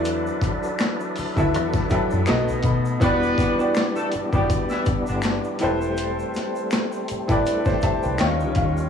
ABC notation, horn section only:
X:1
M:4/4
L:1/16
Q:"Swing 16ths" 1/4=81
K:Em
V:1 name="Horn section"
z16 | [B,B]3 z2 [A,A] z [G,G] z [E,E] z [D,D]2 z3 | z16 |]